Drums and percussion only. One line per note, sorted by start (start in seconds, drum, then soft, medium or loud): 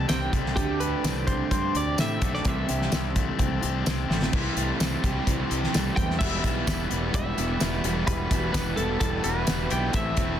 0.09 snare medium
0.09 closed hi-hat medium
0.09 tambourine medium
0.33 kick medium
0.33 closed hi-hat medium
0.46 snare soft
0.57 kick medium
0.57 closed hi-hat medium
0.80 closed hi-hat medium
1.04 snare loud
1.04 closed hi-hat loud
1.04 tambourine loud
1.27 kick medium
1.27 closed hi-hat medium
1.51 kick medium
1.51 closed hi-hat medium
1.75 closed hi-hat medium
1.98 snare medium
1.98 closed hi-hat medium
1.98 tambourine loud
2.22 kick medium
2.22 closed hi-hat medium
2.34 snare soft
2.45 kick loud
2.45 closed hi-hat medium
2.69 closed hi-hat medium
2.82 snare soft
2.92 snare loud
2.92 closed hi-hat medium
2.92 tambourine loud
3.16 kick medium
3.16 closed hi-hat medium
3.39 kick medium
3.39 closed hi-hat medium
3.63 closed hi-hat medium
3.86 snare medium
3.86 closed hi-hat medium
3.86 tambourine medium
4.11 snare medium
4.22 snare medium
4.33 kick loud
4.33 crash medium
4.57 closed hi-hat medium
4.80 snare loud
4.80 closed hi-hat loud
4.80 tambourine medium
4.80 tambourine loud
5.04 kick medium
5.04 closed hi-hat medium
5.27 kick medium
5.27 closed hi-hat loud
5.51 closed hi-hat medium
5.64 snare soft
5.74 snare loud
5.74 closed hi-hat medium
5.74 tambourine loud
5.74 tambourine medium
5.97 kick medium
5.97 closed hi-hat medium
6.11 snare soft
6.21 kick loud
6.21 crash loud
6.21 tambourine medium
6.44 kick medium
6.44 closed hi-hat medium
6.44 tambourine medium
6.67 kick loud
6.67 snare loud
6.67 closed hi-hat loud
6.67 tambourine loud
6.91 closed hi-hat medium
6.91 tambourine soft
7.14 kick medium
7.14 closed hi-hat loud
7.38 closed hi-hat medium
7.38 tambourine medium
7.60 snare loud
7.60 closed hi-hat medium
7.60 tambourine loud
7.84 closed hi-hat medium
7.84 tambourine medium
8.07 kick loud
8.07 closed hi-hat loud
8.07 tambourine medium
8.31 kick loud
8.31 closed hi-hat medium
8.31 tambourine medium
8.54 kick loud
8.54 snare loud
8.54 closed hi-hat loud
8.54 tambourine loud
8.77 closed hi-hat medium
8.77 tambourine soft
9.01 kick medium
9.01 closed hi-hat loud
9.24 closed hi-hat medium
9.24 tambourine medium
9.47 snare loud
9.47 closed hi-hat loud
9.47 tambourine loud
9.70 closed hi-hat medium
9.70 tambourine medium
9.93 kick loud
9.93 closed hi-hat medium
9.93 tambourine medium
10.17 kick medium
10.17 closed hi-hat medium
10.17 tambourine medium